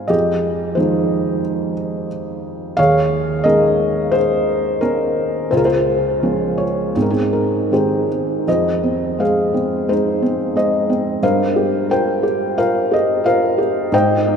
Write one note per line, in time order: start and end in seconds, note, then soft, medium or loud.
0.00 0.10 G#3 soft
0.00 0.11 C4 soft
0.00 0.11 F4 soft
0.00 0.11 C5 soft
0.00 0.12 F5 medium
0.00 0.10 G#5 medium
0.08 2.74 F2 soft
0.08 1.41 G4 medium
0.08 0.76 G#4 soft
0.08 0.79 D#5 medium
0.75 2.74 D#3 soft
0.75 2.74 F3 soft
0.75 2.74 G#3 soft
0.75 2.07 D#4 soft
0.75 2.07 G#4 soft
0.75 1.72 C5 medium
2.77 5.48 D#2 soft
2.77 3.44 G#4 medium
2.77 4.09 C#5 medium
2.77 3.46 F5 medium
3.44 5.48 G#3 soft
3.44 4.81 C#4 soft
3.44 5.49 D#4 soft
3.44 4.12 G#4 medium
3.44 4.79 A#4 medium
3.44 4.15 D#5 medium
4.12 5.49 G#4 soft
4.12 4.78 C5 medium
4.81 5.48 C#4 soft
4.81 5.54 A#4 medium
5.51 6.91 C#2 soft
5.51 5.65 F4 soft
5.51 5.65 G#4 soft
5.51 5.59 C5 medium
5.57 5.65 A#4 medium
5.65 6.91 F4 soft
5.65 6.92 G#4 medium
5.65 6.61 C5 medium
6.23 6.93 F3 soft
6.23 6.93 G#3 soft
6.23 6.93 C#4 soft
6.58 6.92 C#5 medium
6.95 8.44 G#2 soft
6.95 7.10 C4 soft
6.95 7.10 D#4 soft
6.95 7.02 G#4 soft
7.02 7.10 A#4 soft
7.10 7.71 C4 soft
7.10 7.72 D#4 soft
7.10 8.07 G#4 medium
7.33 7.73 A#4 soft
7.71 8.45 D#3 soft
7.71 8.45 G#3 soft
7.71 8.45 C4 soft
7.71 8.44 D#4 soft
7.71 8.44 G4 soft
7.71 8.48 C5 soft
8.47 11.19 F2 soft
8.47 9.19 G#4 soft
8.47 9.19 C5 soft
8.47 9.21 D#5 medium
8.83 9.52 C4 soft
9.19 9.87 G#3 soft
9.19 9.88 G#4 soft
9.19 9.88 C5 soft
9.19 9.91 F5 medium
9.54 10.21 C4 soft
9.88 10.54 G#3 soft
9.88 11.19 D#4 soft
9.88 10.55 G#4 soft
9.88 10.55 C5 medium
10.22 10.88 C4 soft
10.56 11.21 G#3 soft
10.56 11.19 G#4 soft
10.56 11.19 C5 soft
10.56 11.19 D#5 medium
10.90 11.22 C4 soft
11.22 13.89 G2 medium
11.22 11.90 A#4 medium
11.22 11.90 C5 medium
11.22 11.92 F5 medium
11.56 12.22 G4 soft
11.90 12.56 F4 soft
11.90 12.57 A#4 soft
11.90 12.57 C5 soft
11.90 12.60 G5 medium
12.23 12.90 G4 soft
12.57 13.23 F4 soft
12.57 13.25 A#4 medium
12.57 13.25 C5 medium
12.57 12.93 F5 medium
12.91 13.57 G4 soft
12.91 13.27 D#5 medium
13.24 13.90 F4 soft
13.24 13.89 A#4 medium
13.24 13.90 C5 medium
13.24 13.95 F5 medium
13.58 13.92 G4 soft
13.92 14.37 G#2 medium
13.92 14.37 C5 medium
13.92 14.37 D#5 medium
13.92 14.37 G5 medium
14.27 14.37 D#4 soft